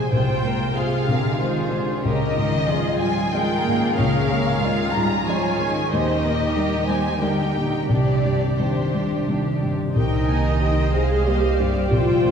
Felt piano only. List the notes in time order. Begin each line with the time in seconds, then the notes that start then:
Already playing: C2 C3 G#3 F4 C5
0.12 C2
0.45 G#3
0.77 G#3 F4 C5
1.08 C3
1.41 G#3 F4 C5
1.72 G#3
2.05 C#2
2.37 G#2
2.69 G#3 F4 D#5
3.02 F3
3.34 G#3 F4 D#5
3.67 G#2
3.99 C#2
4.31 G#3
4.64 G#3 F4 D#5
4.95 G#2
5.28 G#3 F4 D#5
5.60 G#3
5.93 D#2
6.25 A#2
6.57 G3 D#4 D#5
6.88 G3
7.22 G3 G4 D#5
7.56 A#2
7.89 C2
8.25 G2
8.59 D#3 G3 D5
8.95 G3
9.28 D#3 G3 D5
9.63 G2
9.96 C2
10.28 A#3
10.61 G4
10.94 C5
11.27 A#3
11.60 G2
11.91 C2
12.24 A#3